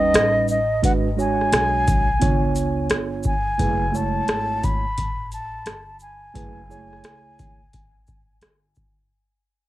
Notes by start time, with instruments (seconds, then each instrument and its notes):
Already playing: upright bass D#2, tine electric piano G3 C#4 D#4 B4, flute D#5
0.14 upright bass A1, cross-stick, closed hi-hat
0.48 flute D#5, shaker
0.82 upright bass G#1, tine electric piano G#3 D4 F#4 B4, flute F#5, kick, closed hi-hat
1.16 tine electric piano G#3 D4 F#4 C#5, flute G#5, shaker
1.41 cross-stick
1.52 upright bass B1, cross-stick, closed hi-hat
1.88 kick, closed hi-hat, shaker
2.20 upright bass C#2, tine electric piano B3 D4 F4 C#5, kick, closed hi-hat
2.56 closed hi-hat, shaker
2.90 upright bass G1, cross-stick, closed hi-hat
3.23 flute G#5, kick, shaker
3.58 upright bass F#1, tine electric piano A3 E4 G#4 B4, kick, closed hi-hat
3.92 tine electric piano G#3 A3 E4 C#5, shaker
3.96 flute A5
4.27 upright bass G#1, cross-stick, closed hi-hat
4.64 flute B5, kick, closed hi-hat, shaker
4.85 muted upright bass stroke
4.98 upright bass A1, kick, closed hi-hat
5.32 flute A5, closed hi-hat, shaker
5.66 upright bass G1, cross-stick, closed hi-hat
6.00 flute G#5, shaker
6.34 upright bass F#1, tine electric piano A3 E4 G#4 B4, kick, closed hi-hat
6.69 tine electric piano G#3 E4 G#4 C#5, shaker
6.75 tine electric piano A3
6.93 cross-stick
7.04 upright bass C#2, cross-stick, closed hi-hat
7.39 kick, closed hi-hat, shaker
7.73 upright bass A1, kick, closed hi-hat
8.07 kick, shaker
8.41 upright bass G1, cross-stick, closed hi-hat
8.75 kick, shaker